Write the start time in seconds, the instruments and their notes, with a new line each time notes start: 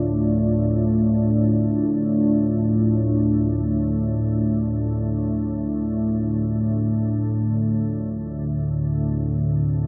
Already playing: synth drone D2 A2, analog synth pad A3 D4 F4 D5
8.27 analog synth pad D3
9.03 analog synth pad C4